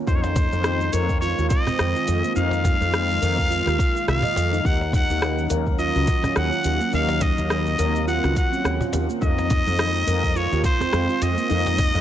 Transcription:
0.07 F2 D#3 G#3 C4 D#4 F4 C5, kick, shaker
0.16 C#5
0.22 C5, cajon slap, shaker
0.36 D#4, cajon bass, kick, closed hi-hat, shaker
0.52 F2, shaker
0.64 D#4, cross-stick, shaker
0.81 shaker
0.93 F2 A#4 C#5, closed hi-hat, shaker
1.09 kick, shaker
1.21 F4 C#5, shaker
1.38 D#2 F4, shaker
1.49 D#5, kick, cajon bass, closed hi-hat, shaker
1.67 C4, cajon bass, cross-stick, cajon slap, shaker
1.79 F2, cross-stick, shaker
1.95 F4, shaker
2.07 F2, closed hi-hat, shaker
2.24 A#3, shaker
2.36 F2 A#3 D#4 F5, shaker
2.51 cajon slap, shaker
2.65 D#4, cajon bass, kick, closed hi-hat, shaker
2.81 F2, shaker
2.94 D#4, cross-stick, shaker
3.10 cajon slap, shaker
3.22 F2 A#4, closed hi-hat, shaker
3.38 kick, shaker
3.50 F4, shaker
3.66 D#2 F4, cross-stick, cajon slap, shaker
3.79 kick, cajon slap, closed hi-hat, shaker
3.95 F4, shaker
4.08 C2 F5, cross-stick, shaker
4.23 D#5, cajon bass, shaker
4.36 F2, cajon slap, closed hi-hat, shaker
4.53 D#4, shaker
4.65 D#2 F#3 C#4 D#4 F#5, kick, shaker
4.81 cajon slap, shaker
4.93 D#4 F#5, cajon bass, kick, closed hi-hat, shaker
5.09 D#2, shaker
5.22 D#4, cross-stick, shaker
5.38 shaker
5.50 D#2 A#4, closed hi-hat, shaker
5.66 kick, shaker
5.79 F4 D#5, shaker
5.95 C#2 F#4, shaker
6.07 kick, cajon bass, closed hi-hat, shaker
6.22 C#4, cajon bass, cross-stick, cajon slap, shaker
6.36 D#2 F#5, cross-stick, shaker
6.52 F4, shaker
6.64 D#2, closed hi-hat, shaker
6.81 A#3, shaker
6.93 D#2 C4 D#4 F5, shaker
7.09 cajon slap, shaker
7.21 D#4 D#5, cajon bass, kick, closed hi-hat, shaker
7.38 D#2, shaker
7.50 D#4, cross-stick, shaker
7.66 cajon slap, shaker
7.79 D#2 A#4, closed hi-hat, shaker
7.96 shaker
8.07 F4 F#5, shaker
8.24 C#2 F#4, cross-stick, cajon slap, shaker
8.36 F#5, kick, cajon slap, closed hi-hat, shaker
8.52 C#4, shaker
8.64 D#2, cross-stick, shaker
8.80 F4, cajon bass, shaker
8.93 D#2, cajon slap, closed hi-hat, shaker
9.10 A#3, shaker
9.21 F2 G#3 D#4 F4 D#5, kick, shaker
9.38 cajon slap, shaker
9.50 D#4, kick, cajon bass, closed hi-hat, shaker
9.67 F2, shaker
9.79 D#4, cross-stick, shaker
9.95 shaker
10.07 F2 A#4, closed hi-hat, shaker
10.24 kick, shaker
10.36 F4 C#5, shaker
10.52 D#2 F4, shaker
10.64 C5, cajon bass, kick, closed hi-hat, shaker
10.81 C4, cajon bass, cross-stick, cajon slap, shaker
10.93 F2, cross-stick, shaker
11.09 F4, shaker
11.22 F2 D#5, closed hi-hat, shaker
11.38 A#3, shaker
11.50 F2 D#4, shaker
11.67 cajon slap, shaker
11.79 D#4, kick, cajon bass, closed hi-hat, shaker
11.95 F2, shaker

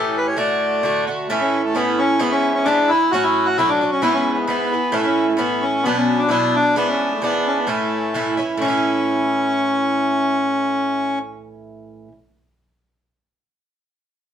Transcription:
Already playing: A2 E3 C#4 G4 A4
0.17 B4
0.27 C#5
0.37 A2 D3 A3 F#4 D5
0.83 A2 D3 A3 F#4
1.07 D3 A3 F#4
1.28 A2 E3 A3 C#4 E4
1.41 C#4
1.65 A3
1.75 A2 E3 B3 C#4 E4
1.98 C#4
2.19 G#2 E3 B3 E4
2.32 C#4
2.55 C#4
2.64 G#2 E3 B3 D4 E4
2.89 B3 E4
2.94 E3
3.11 A2 F#3 C#4 F#4
3.24 E4
3.45 F#4
3.58 A2 F#3 C#4 E4 F#4
3.69 D4
3.81 F#3 C#4 F#4
3.92 C#4
4.02 G#2 E3 B3 E4
4.14 C#4
4.34 B3 C#4
4.47 G#2 E3 B3 E4
4.72 E3 B3 E4
4.92 A2 E3 A3 C#4 E4
5.05 C#4
5.28 A3
5.37 A2 E3 B3 C#4 E4
5.61 C#4
5.83 B2 F#3 B3
5.87 D4
5.97 C#4
6.19 D4
6.29 B2 F#3 B3 D4 E4
6.55 D4
6.76 G#2 E3 B3 D4
6.90 C#4
7.12 A3
7.22 G#2 E3 B3 D4
7.47 C#4
7.58 B3
7.67 A2 E3 A3 C#4 E4
8.14 A2 E3 C#4 E4
8.37 E3 C#4 E4
8.57 A2 C#4
8.62 E3 C#4
8.68 E4

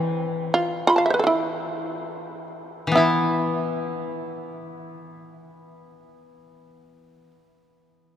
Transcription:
Already playing: E3 E4
0.54 F4
0.87 F4 B5 C6
0.96 F5 A5
1.06 E5
1.10 B4 C5
1.19 A4
1.24 E4 F4
2.87 E3
2.92 B3 E4
2.97 E4

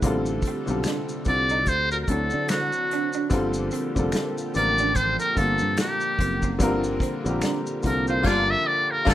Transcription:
0.02 A1 C3 D3 G3 A3 A#3 C4 F4 G4, kick, closed hi-hat, maracas
0.06 A4
0.26 maracas
0.42 kick, closed hi-hat, maracas
0.48 C4
0.66 B1 D3 G3 C4 F4, maracas
0.70 A4
0.84 D4, finger snap, snare, closed hi-hat, maracas
1.09 maracas
1.25 C2 D3 G3 C4 F4 D5, muted clean electric guitar stroke, kick, closed hi-hat, maracas
1.29 A4
1.49 D#4, maracas
1.66 D2 D3 C4 F#4 C5, kick, closed hi-hat, maracas
1.91 A#4, maracas
2.03 A#4
2.07 D2 F#3 C4 D4 E4 A4, kick, closed hi-hat, maracas
2.11 A4
2.30 D3, maracas
2.48 F#4, finger snap, snare, closed hi-hat, maracas
2.53 muted clean electric guitar stroke
2.72 maracas
2.91 D4, closed hi-hat
3.13 D4, maracas
3.30 G1 D3 F3 G3 A#3 C4 F4 G4, kick, closed hi-hat, maracas
3.34 A4
3.54 maracas
3.71 C4, closed hi-hat, maracas
3.95 F1 D3 G3 C4 F4 A4, kick, maracas
4.12 finger snap, muted clean electric guitar stroke, snare, closed hi-hat, maracas
4.38 maracas
4.54 A1 D3 G3 A#3 C4 F4 D5, closed hi-hat, maracas
4.58 A#4
4.78 D4, maracas
4.95 C5, kick, closed hi-hat, maracas
5.20 A#4, maracas
5.35 G1 D3 G3 A#3 C4 F4 A4, kick, closed hi-hat, maracas
5.40 A#3
5.58 G2, maracas
5.77 G4, finger snap, snare, closed hi-hat, maracas
5.81 muted clean electric guitar stroke
6.01 maracas
6.19 F#1 C4, kick, closed hi-hat
6.42 C4, kick, maracas
6.59 G1 D3 G3 A#3 C4 F4, kick, closed hi-hat, maracas
6.63 A#4
6.84 maracas
7.00 C4, kick, closed hi-hat, maracas
7.25 A#1 D3 G3 C4 F4, maracas
7.29 G4
7.42 D4, finger snap, snare, closed hi-hat, maracas
7.67 maracas
7.82 C2 D3 G3 C4 F4 A#4, muted clean electric guitar stroke, kick, closed hi-hat, maracas
7.87 A4
8.07 F4 C5, maracas
8.23 G1 D3 G3 A#3 D4 F4, kick, snare, crash
8.27 D5
8.51 E5
8.67 D5
8.91 A#4
9.05 G1 D3 G3 A#3 D4 F4, kick, snare, crash
9.09 A4

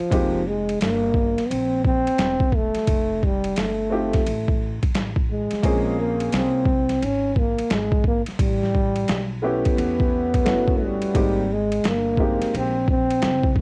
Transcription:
Already playing: F3
0.10 F1 G#3 A#3 C4 D#4 G4, kick, ride
0.48 G#3
0.69 ride
0.81 G1 A#3, snare, hi-hat pedal, ride
1.14 kick
1.38 snare, ride
1.46 B3 C4
1.50 A#1, ride
1.85 C4, kick
2.07 muted upright bass stroke, ride
2.18 E1, snare, hi-hat pedal, ride
2.40 kick
2.52 A3, kick
2.75 muted upright bass stroke, snare, ride
2.87 F1, kick, ride
3.23 G3, kick
3.44 ride
3.56 G1 A3, snare, hi-hat pedal, ride
3.90 A3 C4 D#4 F4 G4
4.13 muted upright bass stroke, kick, snare, ride
4.26 A1, ride
4.48 kick
4.83 muted upright bass stroke, kick, ride
4.94 A1, snare, hi-hat pedal, ride
5.16 kick
5.31 G#3
5.51 muted upright bass stroke, snare, ride
5.62 A#1 A#3 C4 C#4 F4 G#4, kick, ride
6.00 A#3
6.20 ride
6.32 C2 C4, snare, hi-hat pedal, ride
6.65 kick
6.89 snare, ride
7.02 G#1 C#4, ride
7.36 A#3, kick
7.58 muted upright bass stroke, ride
7.70 G#1 G#3, snare, hi-hat pedal, ride
7.92 kick
8.04 A#3, kick
8.26 muted upright bass stroke, snare, ride
8.39 A1 G3, kick, ride
8.63 snare
8.75 kick
8.96 ride
9.08 B1, snare, hi-hat pedal, ride
9.42 A3 B3 C#4 E4 G4
9.65 B3, muted upright bass stroke, kick, ride
9.77 E2, ride
10.00 kick
10.34 kick, ride
10.45 G1 A3 B3 C#4 E4 F#4, snare, hi-hat pedal, ride
10.68 kick
10.84 G3
11.02 muted upright bass stroke, ride
11.14 G#1 G#3 A#3 C4 D#4 G4, kick, ride
11.53 G#3
11.72 ride
11.84 G1, snare, hi-hat pedal, ride
11.88 A#3
12.17 G#3 A#3 C4 D#4 G4, kick
12.41 muted upright bass stroke, snare, ride
12.54 A#1 C4, ride
12.88 C4, kick
13.10 ride
13.22 F#1, snare, hi-hat pedal, ride
13.44 kick
13.56 kick

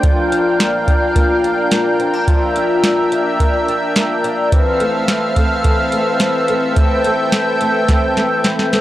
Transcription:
Already playing: D4 G5
0.03 F3 F4 A#4 F5, kick, closed hi-hat
0.31 D4, closed hi-hat
0.59 A#3, snare, closed hi-hat
0.87 D4, kick, closed hi-hat
1.16 A#3, kick, closed hi-hat
1.44 D4, closed hi-hat
1.71 A#3, snare, closed hi-hat
1.99 C4, closed hi-hat
2.14 D4
2.28 F3 F4 E5, kick, closed hi-hat
2.56 D4, closed hi-hat
2.84 A#3, snare, closed hi-hat
3.12 D4, closed hi-hat
3.40 A#3, kick, closed hi-hat
3.68 D4, closed hi-hat
3.96 A#3, snare, closed hi-hat
4.24 D4, closed hi-hat
4.52 E3 C4 A4 E5 F5, kick, closed hi-hat
4.80 A3, closed hi-hat
5.08 E3, snare, closed hi-hat
5.36 A3, kick, closed hi-hat
5.64 E3, kick, closed hi-hat
5.92 A3, closed hi-hat
6.20 E3, snare, closed hi-hat
6.48 A3, closed hi-hat
6.76 E3 C4 G5, kick, closed hi-hat
7.04 A3, closed hi-hat
7.32 E3, snare, closed hi-hat
7.61 A3, closed hi-hat
7.88 E3, kick, snare, closed hi-hat
8.17 A3, snare, closed hi-hat
8.44 E3, snare, closed hi-hat
8.59 snare
8.73 A3, snare, closed hi-hat

